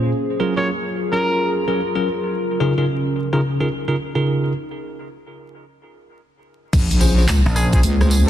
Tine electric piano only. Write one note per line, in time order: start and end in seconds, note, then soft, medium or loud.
0.00 0.11 A#2 medium
0.00 0.11 C#4 medium
0.00 0.11 F4 medium
0.00 0.11 G#4 medium
0.00 0.11 C5 medium
0.40 0.53 F#3 medium
0.40 0.53 C#4 medium
0.40 0.53 F4 medium
0.40 0.53 G#4 medium
0.40 0.53 A#4 loud
0.57 0.69 F#3 medium
0.57 0.69 C#4 medium
0.57 0.69 F4 medium
0.57 0.69 G#4 medium
0.57 0.69 A#4 loud
1.13 1.63 F#3 medium
1.13 1.64 C#4 medium
1.13 1.64 F4 medium
1.13 1.63 G#4 medium
1.13 1.64 A#4 loud
1.68 1.80 F#3 medium
1.68 1.80 C#4 medium
1.68 1.80 F4 medium
1.68 1.80 G#4 medium
1.68 1.80 A#4 medium
1.95 2.07 F#3 medium
1.95 2.07 C#4 medium
1.95 2.07 F4 medium
1.95 2.07 G#4 medium
1.95 2.07 A#4 medium
2.60 2.73 C#3 loud
2.60 2.73 D#4 medium
2.60 2.73 F4 medium
2.60 2.73 G#4 medium
2.60 2.73 A#4 loud
2.78 2.85 C#3 medium
2.78 2.85 D#4 medium
2.78 2.85 F4 medium
2.78 2.85 G#4 medium
2.78 2.85 A#4 medium
3.33 3.40 C#3 loud
3.33 3.40 D#4 medium
3.33 3.40 F4 medium
3.33 3.40 G#4 medium
3.33 3.40 A#4 loud
3.60 3.67 C#3 medium
3.60 3.67 D#4 medium
3.60 3.67 F4 medium
3.60 3.67 G#4 medium
3.60 3.67 A#4 medium
3.88 3.95 C#3 medium
3.88 3.95 D#4 medium
3.88 3.95 F4 medium
3.88 3.95 G#4 medium
3.88 3.95 A#4 medium
4.15 4.52 C#3 medium
4.15 4.52 D#4 medium
4.15 4.52 F4 medium
4.15 4.52 G#4 medium
4.15 4.52 A#4 medium
7.01 7.13 C#4 loud
7.01 7.13 F4 medium
7.01 7.13 G#4 medium
7.01 7.13 C5 loud
7.18 7.25 C#4 medium
7.18 7.25 F4 medium
7.18 7.25 G#4 medium
7.18 7.25 C5 medium
7.73 7.80 C#4 loud
7.73 7.80 F4 loud
7.73 7.80 G#4 medium
7.73 7.80 C5 loud
8.01 8.08 C#4 medium
8.01 8.08 F4 medium
8.01 8.08 G#4 medium
8.01 8.08 C5 medium